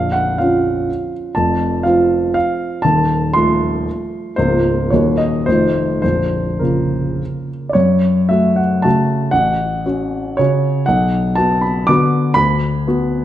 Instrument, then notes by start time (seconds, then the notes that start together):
grand piano
Already playing: A#0 A#1 F5
0.12 F#5
0.38 F3 C#4 F4 F5
1.35 F1 F2 A5
1.83 F3 C4 F4 F5
2.34 F5
2.82 D#1 D#2 A5
3.33 F3 A3 F4 C6
4.36 C#1 C#2 F3 A#3 F4 C5
4.90 D#1 D#2 D#3 A#3 F#4 C#5
5.17 D#5
5.46 F1 F2 D#3 A3 F4 C5
6.02 A#0 A#1 C5
6.59 C#3 A#3 F4 A#4
7.69 C#5 D5
7.75 F#2
8.29 A3 F#4 E5
8.56 F#5
8.82 C#3 A3 F#4 A5
9.31 A1 F#5
9.86 C#4 F#4
10.37 C#3 C#4 F#4 C#5
10.86 B1 F#5
11.35 B3 F#4 A5
11.61 B5
11.87 D3 B3 F#4 D6
12.34 D2 B5
12.88 B3 F#4